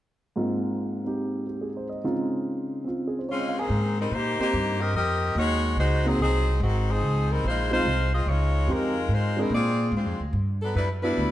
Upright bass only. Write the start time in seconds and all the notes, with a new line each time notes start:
3.69 G#2
4.11 A#2
4.39 muted upright bass stroke
4.53 G2
4.94 F2
5.35 D#2
5.76 C#2
6.19 C2
6.60 G#1
7.01 C#2
7.44 A#1
7.85 C2
8.26 C#2
8.67 F2
9.08 G#2
9.50 A#2
9.91 G#2
10.05 F2
10.20 D2
10.33 G2
10.75 F#2
11.17 D2